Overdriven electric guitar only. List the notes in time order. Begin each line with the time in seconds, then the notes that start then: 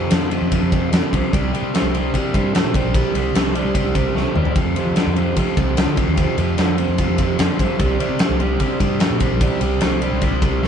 0.11 F2 D3
0.31 F2 C3
0.53 F2 C3
0.72 F2 C3
0.92 F2 D3
1.12 F2 C3
1.33 C3 G3
1.53 C3 G3
1.74 C3 A3
1.94 C3 G3
2.14 C3 G3
2.34 C3 G3
2.54 C3 A3
2.75 C3 G3
2.95 C3 G3
3.15 C3 G3
3.35 C3 A3
3.55 C3 G3
3.75 C3 G3
3.95 C3 G3
4.15 C3 A3
4.36 C3 G3
4.56 F2 C3
4.76 F2 C3
4.96 F2 D3
5.16 F2 C3
5.36 F2 C3
5.57 F2 C3
5.77 F2 D3
5.98 F2 C3
6.17 F2 C3
6.37 F2 C3
6.58 F2 D3
6.78 F2 C3
7.00 F2 C3
7.20 F2 C3
7.39 F2 D3
7.61 F2 C3
7.80 C3 G3
8.00 C3 G3
8.21 C3 A3
8.40 C3 G3
8.60 C3 G3
8.80 C3 G3
9.00 C3 A3
9.21 C3 G3
9.41 C3 G3
9.61 C3 G3
9.82 C3 A3
10.01 C3 G3
10.23 C3 G3
10.42 C3 G3
10.63 C3 A3